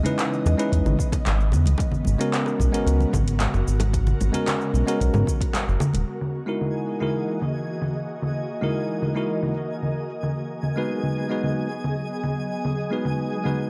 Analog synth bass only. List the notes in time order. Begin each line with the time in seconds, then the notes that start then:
0.46 E2
0.72 E2
0.86 G#1
1.26 G#1
1.53 E2
1.66 C#2
2.07 G#1
2.59 B1
2.86 C#2
3.13 G#1
3.54 F#1
3.67 G#1
4.21 G#1
4.74 B1
5.00 B1
5.14 G#2
5.68 F#1
5.94 D#1